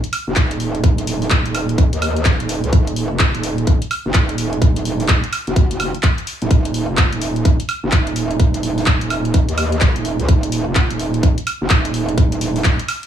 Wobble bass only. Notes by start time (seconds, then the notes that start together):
0.27 F#1
0.36 D#1
0.84 D#1
1.31 D#1
1.46 D#1
1.93 D#2
2.40 D#1
2.64 C#2
2.73 D#1
3.11 F1
3.35 D#1
4.06 F#1
4.14 D#1
4.62 D#1
5.09 D#1
5.47 F#1
6.42 D#1
6.51 D#1
6.89 F1
7.13 D#1
7.83 F#1
7.92 D#1
8.40 D#1
8.87 D#1
9.02 D#1
9.49 D#2
9.96 D#1
10.20 C#2
10.29 D#1
10.67 F1
10.91 D#1
11.61 F#1
11.70 D#1
12.18 D#1
12.65 D#1